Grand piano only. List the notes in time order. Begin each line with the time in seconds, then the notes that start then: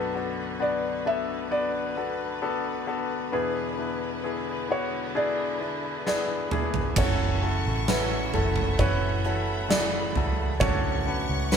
Already playing: B1 F#2 B3 D4 F#4 A4
0.14 B3 D4 F#4 A4
0.59 B3 D4 F#4 B4
1.05 B3 D4 F#4 A4
1.51 B3 D4 F#4 B4
1.96 B3 D4 F#4 A4
2.42 B3 D4 F#4 A4
2.87 B3 D4 F#4 A4
3.32 E2 B2 B3 D4 E4 G#4
3.78 B3 D4 E4 B4
4.23 B3 D4 E4 G#4
4.69 B3 D4 E4 F#4
5.15 B3 D4 E4 G#4
5.61 B3 D4 E4 B4
6.06 B3 D4 E4 G#4
6.51 B3 D4 E4 G#4
6.98 C#3 C#4 E4 F#4 A4
7.42 C#4 E4 F#4 A4
7.88 C#4 E4 F#4 A4
8.34 C#4 E4 F#4 A4
8.79 C#4 E4 F#4 B4
9.25 C#4 E4 F#4 A4
9.68 C#3 E4 F#4 G#4
10.16 C#3 E4 F#4 A4
10.61 A2 C#4 D4 F#4 A4
11.06 C#4 D4 F#4 B4
11.51 C#4 D4 F#4 A4